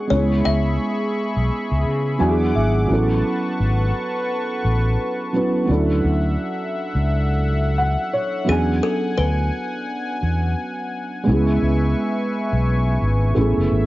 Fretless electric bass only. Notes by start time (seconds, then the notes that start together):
0.11 C#2
0.46 C#2
1.36 B1
1.71 C#2
1.85 C#3
2.20 E2
2.55 G#1
2.90 A1
3.60 G#1
4.64 A1
5.69 D2
6.04 D2
6.95 C#2
8.48 E2
9.18 D2
10.23 E2
11.27 C#2
11.62 C#2
12.52 B1
13.01 G#1
13.36 A1
13.57 F#1
13.71 G#1